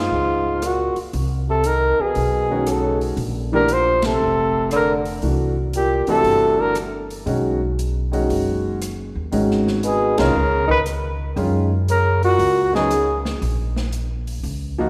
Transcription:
Already playing: tenor saxophone G#2, trumpet F4
0.11 upright bass C#2
0.62 tenor saxophone A#2, trumpet F#4, cross-stick, closed hi-hat
0.96 muted upright bass stroke, open hi-hat
1.13 upright bass C2, open hi-hat
1.49 tenor saxophone C3, trumpet A4
1.64 tenor saxophone D#3, trumpet A#4, closed hi-hat
2.00 tenor saxophone B2, trumpet G#4, muted upright bass stroke
2.15 upright bass B1, open hi-hat
2.50 grand piano D#3 G#3 C#4 F#4
2.67 tenor saxophone C#3, trumpet A4, cross-stick, closed hi-hat
3.01 open hi-hat
3.17 upright bass A#1, open hi-hat
3.52 tenor saxophone D3, grand piano E3 A3 D4 G4, trumpet A#4
3.68 tenor saxophone F3, closed hi-hat
3.73 trumpet C5
4.02 tenor saxophone C3, trumpet A4, snare, ride
4.19 upright bass F1
4.71 tenor saxophone D3, cross-stick, closed hi-hat
4.76 trumpet A#4
5.05 open hi-hat
5.22 upright bass C2, grand piano E3 A3 D4 F#4, open hi-hat
5.73 tenor saxophone A#2, trumpet G4, closed hi-hat
6.07 tenor saxophone C3, grand piano E3 A3 D4 F#4, trumpet A4, muted upright bass stroke, open hi-hat
6.23 upright bass G1, open hi-hat
6.59 tenor saxophone D3, trumpet A#4
6.75 cross-stick, closed hi-hat
7.10 open hi-hat
7.26 upright bass B1, grand piano D#3 G#3 C#4 F#4, open hi-hat
7.79 closed hi-hat
8.12 grand piano D#3 G#3 C#4 F#4, open hi-hat
8.29 upright bass F#1, open hi-hat
8.82 cross-stick, closed hi-hat
9.15 upright bass D#2
9.32 upright bass G#1, grand piano D#3 G#3 C#4 F#4, open hi-hat
9.51 snare
9.67 snare
9.83 tenor saxophone B2, trumpet G#4, closed hi-hat
10.18 upright bass C2, tenor saxophone C#3, grand piano D#3 G#3 C#4 F4, trumpet A#4, snare, ride
10.35 upright bass C#2
10.67 tenor saxophone D#3, trumpet B4, kick
10.86 cross-stick, closed hi-hat
11.36 upright bass F#2, grand piano D#3 G#3 C#4 F4, open hi-hat
11.88 tenor saxophone C#3, trumpet A#4, closed hi-hat
12.23 tenor saxophone A#2, trumpet F#4, open hi-hat
12.38 upright bass C#2, open hi-hat
12.73 grand piano C#3 F#3 B3 D#4, tenor saxophone C#3, trumpet G#4, snare
12.91 cross-stick, closed hi-hat
13.25 snare
13.42 upright bass A#1, open hi-hat
13.76 snare
13.93 closed hi-hat
14.27 open hi-hat
14.43 upright bass C#2, open hi-hat
14.78 grand piano F3 A#3 D#4 F#4

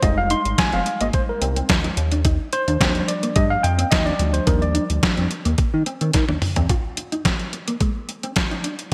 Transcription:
0.02 analog synth bass F1, tine electric piano G3 G#3 D#4 D#5, clean electric guitar F4, kick, closed hi-hat
0.17 tine electric piano F5, muted clean electric guitar stroke
0.30 clean electric guitar D#4, tine electric piano C6, closed hi-hat
0.45 analog synth bass G#1, closed hi-hat
0.58 tine electric piano G#5, kick, snare, closed hi-hat
0.73 analog synth bass F1, clean electric guitar C4, tine electric piano F5, closed hi-hat
0.86 muted clean electric guitar stroke, closed hi-hat
1.01 analog synth bass G#1, clean electric guitar A#3, tine electric piano D#5, closed hi-hat
1.13 tine electric piano C5, muted clean electric guitar stroke, kick, closed hi-hat
1.29 tine electric piano A#4
1.42 analog synth bass C2, clean electric guitar C4, closed hi-hat
1.56 clean electric guitar C4, closed hi-hat
1.69 analog synth bass D#2, kick, snare, closed hi-hat
1.84 clean electric guitar D#4, closed hi-hat
1.97 analog synth bass D#2, muted clean electric guitar stroke, closed hi-hat
2.12 clean electric guitar D4, closed hi-hat
2.25 clean electric guitar D#4, kick, closed hi-hat
2.53 tine electric piano C5, muted clean electric guitar stroke, closed hi-hat
2.68 analog synth bass D#2, clean electric guitar D4, closed hi-hat
2.80 analog synth bass D#2, tine electric piano F3 G3 D4, clean electric guitar C4, kick, snare, closed hi-hat
2.95 closed hi-hat
3.08 tine electric piano D5, muted clean electric guitar stroke, closed hi-hat
3.23 clean electric guitar A#3, closed hi-hat
3.36 analog synth bass G2, clean electric guitar G3, tine electric piano D#5, kick, closed hi-hat
3.50 tine electric piano F5
3.63 analog synth bass F2, tine electric piano G5, muted clean electric guitar stroke, closed hi-hat
3.78 clean electric guitar C4, closed hi-hat
3.91 analog synth bass D#2, tine electric piano D#5, kick, snare, closed hi-hat
4.06 clean electric guitar D4, tine electric piano D5, closed hi-hat
4.19 analog synth bass D2, tine electric piano F3 G3 D4, clean electric guitar D4, closed hi-hat
4.34 tine electric piano C5, closed hi-hat
4.47 analog synth bass D#2, clean electric guitar D#4, tine electric piano A#4, kick, closed hi-hat
4.62 tine electric piano D5, muted clean electric guitar stroke, closed hi-hat
4.75 clean electric guitar D4, closed hi-hat
4.90 analog synth bass D2, closed hi-hat
5.03 tine electric piano F3 G3 D4, kick, snare, closed hi-hat
5.17 analog synth bass F2, clean electric guitar C4, closed hi-hat
5.31 muted clean electric guitar stroke, closed hi-hat
5.45 analog synth bass D#2, clean electric guitar A#3, closed hi-hat
5.58 muted clean electric guitar stroke, kick, closed hi-hat
5.74 analog synth bass D#3
5.86 clean electric guitar C4, closed hi-hat
6.01 analog synth bass D#3, clean electric guitar C4, closed hi-hat
6.13 analog synth bass D#3, kick, snare, closed hi-hat
6.29 analog synth bass D#2, clean electric guitar D4, high tom
6.42 muted clean electric guitar stroke, mid tom, open hi-hat
6.56 analog synth bass E2, clean electric guitar C4, closed hi-hat, floor tom
6.69 clean electric guitar F4, kick, closed hi-hat
6.97 muted clean electric guitar stroke, closed hi-hat
7.12 clean electric guitar D#4, closed hi-hat
7.25 clean electric guitar C4, kick, snare, closed hi-hat
7.39 closed hi-hat
7.53 muted clean electric guitar stroke, closed hi-hat
7.68 clean electric guitar A#3, closed hi-hat
7.80 clean electric guitar G#3, kick, closed hi-hat
8.09 muted clean electric guitar stroke, closed hi-hat
8.23 clean electric guitar C4, closed hi-hat
8.36 muted clean electric guitar stroke, kick, snare, closed hi-hat
8.51 clean electric guitar D#4, closed hi-hat
8.64 clean electric guitar D4, closed hi-hat
8.79 closed hi-hat

